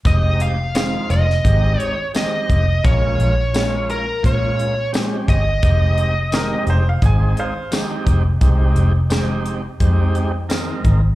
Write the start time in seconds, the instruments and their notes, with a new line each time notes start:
0.05 fingered electric bass F1, tonewheel organ G#3 C4 D#4 G4, lead electric guitar D#5, kick, closed hi-hat
0.40 lead electric guitar F5, closed hi-hat
0.74 clean electric guitar F2 D#3 G#3 C4, tonewheel organ G#3 C4 D#4 F4, lead electric guitar F5, snare, closed hi-hat, tambourine
1.10 fingered electric bass F1, lead electric guitar D#5, closed hi-hat
1.30 snare
1.44 fingered electric bass G#1, tonewheel organ G#3 C4 D#4 G4, kick, closed hi-hat
1.80 lead electric guitar C#5, closed hi-hat
2.14 clean electric guitar F2 D#3 G#3 C4, tonewheel organ G#3 C4 D#4 G4, lead electric guitar D#5, snare, closed hi-hat, tambourine
2.49 fingered electric bass F1, kick, closed hi-hat
2.84 fingered electric bass A#1, tonewheel organ G#3 A#3 C#4 F4, lead electric guitar C#5, kick, closed hi-hat
3.19 fingered electric bass A#1, closed hi-hat
3.53 clean electric guitar A#2 F3 G#3 C#4, tonewheel organ G#3 A#3 C#4 F4, snare, closed hi-hat, tambourine
3.90 lead electric guitar A#4, closed hi-hat
4.23 fingered electric bass A#2, tonewheel organ G#3 A#3 C#4 F4, lead electric guitar C#5, kick, closed hi-hat
4.59 closed hi-hat
4.92 clean electric guitar A#2 F3 G#3 C#4, tonewheel organ G#3 C4 C#4 G4, snare, closed hi-hat, tambourine
5.28 fingered electric bass G1, lead electric guitar D#5, kick, closed hi-hat
5.62 fingered electric bass F1, tonewheel organ G#3 C4 D#4 G4, kick, closed hi-hat
5.98 closed hi-hat
6.32 clean electric guitar F2 D#3 G#3 C4, tonewheel organ G#3 C4 D#4 G4, upright piano A#4, snare, closed hi-hat, tambourine
6.53 upright piano D#5
6.67 fingered electric bass F1, upright piano C5, closed hi-hat
6.89 upright piano F5
7.02 fingered electric bass G#1, tonewheel organ G#3 C4 D#4 G#4, upright piano G#5, kick, closed hi-hat
7.37 upright piano C5 F5, closed hi-hat
7.71 clean electric guitar F2 D#3 G#3 C4, tonewheel organ G#3 C4 D#4 G4, snare, closed hi-hat, tambourine
8.07 fingered electric bass F1, kick, closed hi-hat
8.41 fingered electric bass C2, tonewheel organ G#3 C4 D#4 G4, kick, closed hi-hat
8.76 fingered electric bass F1, closed hi-hat
9.10 clean electric guitar F2 D#3 G#3 C4, tonewheel organ G#3 C4 D#4 G4, snare, closed hi-hat, tambourine
9.46 closed hi-hat
9.80 fingered electric bass F2, tonewheel organ G#3 C4 D#4 G4, kick, closed hi-hat
10.15 closed hi-hat
10.49 clean electric guitar F2 D#3 G#3 C4, tonewheel organ G#3 C4 D#4 A#4, snare, closed hi-hat, tambourine
10.84 fingered electric bass G#1, kick, closed hi-hat